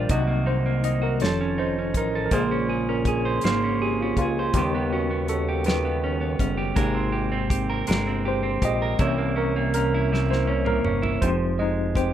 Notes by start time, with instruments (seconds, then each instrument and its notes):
Already playing: clean electric guitar D#3 G3 D4 F4, tine electric piano A#4 C5 D5 D#5
0.09 analog synth bass C2, clean electric guitar C3 F#4, tine electric piano F#3 A#3 D#4 D#5, kick, closed hi-hat
0.27 clean electric guitar A#3
0.46 clean electric guitar D#4, tine electric piano C5
0.66 clean electric guitar A#3
0.84 clean electric guitar D#4, tine electric piano D#5, closed hi-hat
1.02 clean electric guitar F#4, tine electric piano A#4
1.20 analog synth bass F1, tine electric piano D#3 C#4 A4 C#5, clean electric guitar F3 A4, snare, closed hi-hat
1.41 clean electric guitar C#4
1.58 clean electric guitar D#4, tine electric piano C5
1.79 clean electric guitar C#4
1.94 analog synth bass A1, clean electric guitar D#4, tine electric piano A#4, kick, closed hi-hat
2.15 clean electric guitar A4
2.26 tine electric piano A#4
2.31 analog synth bass A#1, tine electric piano C#3 G#3 G#4 C5, clean electric guitar A#3 C5, kick, closed hi-hat
2.51 clean electric guitar C#4
2.69 clean electric guitar G#4
2.89 clean electric guitar C#4, tine electric piano A#4
3.05 clean electric guitar G#4, tine electric piano G#4, kick, closed hi-hat
3.25 clean electric guitar C5
3.41 analog synth bass G#1, clean electric guitar A#3 C5, snare, closed hi-hat
3.64 clean electric guitar C#4
3.82 tine electric piano G4, clean electric guitar G#4
4.01 clean electric guitar C#4, tine electric piano F4
4.17 analog synth bass C#2, tine electric piano F4, kick, closed hi-hat
4.22 clean electric guitar G#4
4.39 clean electric guitar C5
4.54 analog synth bass D#2, tine electric piano C#3 G3 B3 G4, clean electric guitar D#3, kick, closed hi-hat
4.58 clean electric guitar G4
4.75 clean electric guitar B3
4.92 clean electric guitar C#4, tine electric piano F#4
5.11 clean electric guitar B3
5.28 clean electric guitar C#4, tine electric piano A4, closed hi-hat
5.49 clean electric guitar G4
5.64 clean electric guitar D#3 G4, tine electric piano B4, snare, closed hi-hat
5.85 clean electric guitar B3
6.04 clean electric guitar C#4
6.21 clean electric guitar B3
6.39 analog synth bass F#1, tine electric piano C#3 G3 B3, clean electric guitar C#4, kick, closed hi-hat
6.57 clean electric guitar G4
6.76 analog synth bass G#1, tine electric piano C3 A#3 G4, clean electric guitar G#3 A#4, kick, closed hi-hat
6.94 clean electric guitar C4
7.12 clean electric guitar G4
7.32 clean electric guitar C4
7.50 clean electric guitar G4, kick, closed hi-hat
7.70 clean electric guitar A#4
7.87 analog synth bass G1, clean electric guitar G#3 A#4, snare, closed hi-hat
8.07 clean electric guitar C4
8.25 clean electric guitar G4, tine electric piano C5
8.43 clean electric guitar C4
8.62 analog synth bass A#1, clean electric guitar G4, tine electric piano D#5, kick, closed hi-hat
8.82 clean electric guitar A#4
8.99 analog synth bass C2, clean electric guitar C3 E4, tine electric piano E3 A#3 C#4 C#5, kick, closed hi-hat
9.18 clean electric guitar A#3
9.36 clean electric guitar C#4, tine electric piano A#4
9.56 clean electric guitar A#3
9.74 clean electric guitar C#4, tine electric piano A#4, closed hi-hat
9.94 clean electric guitar E4
10.12 clean electric guitar C3 E4, snare
10.30 clean electric guitar A#3, tine electric piano C5, snare
10.47 clean electric guitar C#4, tine electric piano C#5
10.65 clean electric guitar A#3, tine electric piano A#4, mid tom
10.85 analog synth bass G1, clean electric guitar C#4, mid tom
11.02 clean electric guitar E4, floor tom
11.22 analog synth bass F1, clean electric guitar F3, tine electric piano G#3 C4 D#4 G4 C5, kick, closed hi-hat
11.59 clean electric guitar G#3, tine electric piano D#4 D#5
11.95 tine electric piano C4 C5, clean electric guitar G4, kick, closed hi-hat